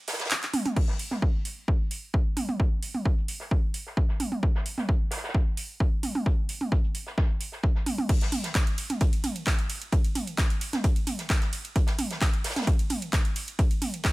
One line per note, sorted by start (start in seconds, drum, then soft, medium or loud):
0.08 snare medium
0.08 closed hi-hat medium
0.08 open hi-hat loud
0.13 snare medium
0.13 closed hi-hat medium
0.19 snare medium
0.19 closed hi-hat medium
0.25 snare medium
0.25 closed hi-hat medium
0.30 clap loud
0.30 closed hi-hat medium
0.30 closed hi-hat loud
0.30 ride medium
0.43 clap soft
0.43 closed hi-hat medium
0.53 closed hi-hat medium
0.53 mid tom medium
0.53 open hi-hat loud
0.66 closed hi-hat medium
0.66 mid tom loud
0.76 kick loud
0.76 closed hi-hat medium
0.76 crash medium
0.88 snare medium
0.99 closed hi-hat medium
0.99 open hi-hat loud
1.11 snare medium
1.11 mid tom medium
1.22 kick loud
1.22 closed hi-hat medium
1.45 closed hi-hat medium
1.45 open hi-hat loud
1.68 kick loud
1.68 closed hi-hat medium
1.91 closed hi-hat medium
1.91 open hi-hat loud
2.13 kick loud
2.13 closed hi-hat medium
2.37 closed hi-hat medium
2.37 mid tom medium
2.37 open hi-hat loud
2.49 mid tom medium
2.60 kick loud
2.60 closed hi-hat medium
2.82 closed hi-hat medium
2.82 open hi-hat loud
2.95 mid tom medium
3.05 kick loud
3.05 closed hi-hat medium
3.18 closed hi-hat soft
3.28 closed hi-hat medium
3.28 open hi-hat loud
3.40 snare soft
3.51 kick loud
3.51 closed hi-hat medium
3.74 closed hi-hat medium
3.74 open hi-hat loud
3.86 snare soft
3.97 kick loud
3.97 closed hi-hat medium
4.09 snare soft
4.20 closed hi-hat medium
4.20 mid tom medium
4.20 open hi-hat loud
4.32 mid tom medium
4.43 kick loud
4.43 closed hi-hat medium
4.55 snare medium
4.66 closed hi-hat medium
4.66 open hi-hat loud
4.78 snare medium
4.78 mid tom medium
4.89 kick loud
4.89 closed hi-hat medium
5.11 snare medium
5.11 closed hi-hat medium
5.11 open hi-hat loud
5.17 snare medium
5.17 closed hi-hat medium
5.24 snare medium
5.24 closed hi-hat medium
5.29 snare medium
5.29 closed hi-hat medium
5.34 kick loud
5.34 closed hi-hat medium
5.57 closed hi-hat medium
5.57 open hi-hat loud
5.80 kick loud
5.80 closed hi-hat medium
6.03 closed hi-hat medium
6.03 mid tom medium
6.03 open hi-hat loud
6.15 mid tom medium
6.26 kick loud
6.26 closed hi-hat medium
6.49 closed hi-hat medium
6.49 open hi-hat loud
6.61 mid tom medium
6.72 kick loud
6.72 closed hi-hat medium
6.84 closed hi-hat soft
6.94 closed hi-hat medium
6.94 open hi-hat loud
7.07 snare medium
7.18 kick loud
7.18 snare loud
7.18 closed hi-hat medium
7.40 closed hi-hat medium
7.40 open hi-hat loud
7.52 snare soft
7.63 kick loud
7.63 closed hi-hat medium
7.75 snare soft
7.86 closed hi-hat medium
7.86 mid tom medium
7.86 open hi-hat loud
7.98 mid tom medium
8.09 kick loud
8.09 closed hi-hat loud
8.09 closed hi-hat medium
8.09 crash loud
8.09 ride medium
8.21 snare medium
8.21 closed hi-hat medium
8.21 ride medium
8.32 closed hi-hat medium
8.32 mid tom medium
8.32 open hi-hat loud
8.32 ride medium
8.44 snare medium
8.44 closed hi-hat medium
8.44 ride medium
8.55 kick loud
8.55 snare loud
8.55 clap loud
8.55 closed hi-hat medium
8.55 closed hi-hat loud
8.55 ride medium
8.67 closed hi-hat medium
8.67 ride medium
8.78 closed hi-hat medium
8.78 open hi-hat loud
8.78 ride medium
8.90 closed hi-hat medium
8.90 mid tom medium
8.90 ride medium
9.01 kick loud
9.01 closed hi-hat loud
9.01 ride medium
9.13 closed hi-hat medium
9.13 ride medium
9.24 closed hi-hat medium
9.24 mid tom medium
9.24 open hi-hat loud
9.24 ride medium
9.36 closed hi-hat medium
9.36 ride medium
9.47 kick loud
9.47 snare loud
9.47 clap loud
9.47 closed hi-hat loud
9.47 ride medium
9.59 closed hi-hat medium
9.59 ride medium
9.69 closed hi-hat medium
9.69 open hi-hat loud
9.69 ride medium
9.82 closed hi-hat medium
9.82 ride medium
9.92 kick loud
9.92 closed hi-hat medium
9.92 ride medium
10.04 closed hi-hat medium
10.04 ride medium
10.15 closed hi-hat medium
10.15 mid tom medium
10.15 open hi-hat loud
10.15 ride medium
10.27 closed hi-hat medium
10.27 ride medium
10.38 kick loud
10.38 snare loud
10.38 clap loud
10.38 closed hi-hat medium
10.38 closed hi-hat loud
10.38 ride medium
10.50 closed hi-hat soft
10.50 closed hi-hat medium
10.50 ride medium
10.61 closed hi-hat medium
10.61 open hi-hat loud
10.61 ride medium
10.73 snare soft
10.73 closed hi-hat medium
10.73 mid tom medium
10.73 ride medium
10.84 kick loud
10.84 closed hi-hat loud
10.84 ride medium
10.96 closed hi-hat medium
10.96 ride medium
11.07 closed hi-hat medium
11.07 mid tom medium
11.07 open hi-hat loud
11.07 ride medium
11.19 snare soft
11.19 closed hi-hat medium
11.19 ride medium
11.30 kick loud
11.30 snare loud
11.30 clap loud
11.30 closed hi-hat medium
11.30 closed hi-hat loud
11.30 ride medium
11.42 snare soft
11.42 closed hi-hat medium
11.42 ride medium
11.53 closed hi-hat medium
11.53 open hi-hat loud
11.53 ride medium
11.65 closed hi-hat medium
11.65 ride medium
11.76 kick loud
11.76 closed hi-hat medium
11.76 ride medium
11.87 snare medium
11.87 closed hi-hat medium
11.87 ride medium
11.98 closed hi-hat medium
11.98 mid tom medium
11.98 open hi-hat loud
11.98 ride medium
12.11 snare medium
12.11 closed hi-hat medium
12.11 ride medium
12.21 kick loud
12.21 snare loud
12.21 clap loud
12.21 closed hi-hat medium
12.21 closed hi-hat loud
12.21 ride medium
12.33 closed hi-hat medium
12.33 ride medium
12.44 snare medium
12.44 closed hi-hat medium
12.44 open hi-hat loud
12.44 ride medium
12.50 snare medium
12.50 closed hi-hat medium
12.56 snare medium
12.56 closed hi-hat medium
12.56 mid tom medium
12.56 ride medium
12.62 snare medium
12.62 closed hi-hat medium
12.67 kick loud
12.67 closed hi-hat loud
12.67 ride medium
12.79 closed hi-hat medium
12.79 ride medium
12.90 closed hi-hat medium
12.90 mid tom medium
12.90 open hi-hat loud
12.90 ride medium
13.02 closed hi-hat medium
13.02 ride medium
13.13 kick loud
13.13 snare loud
13.13 clap loud
13.13 closed hi-hat loud
13.13 ride medium
13.25 closed hi-hat medium
13.25 ride medium
13.36 closed hi-hat medium
13.36 open hi-hat loud
13.36 ride medium
13.48 closed hi-hat medium
13.48 ride medium
13.59 kick loud
13.59 closed hi-hat medium
13.59 ride medium
13.71 closed hi-hat medium
13.71 ride medium
13.82 closed hi-hat medium
13.82 mid tom medium
13.82 open hi-hat loud
13.82 ride medium
13.94 closed hi-hat medium
13.94 ride medium
14.04 kick loud
14.04 snare loud
14.04 clap loud
14.04 closed hi-hat medium
14.04 ride medium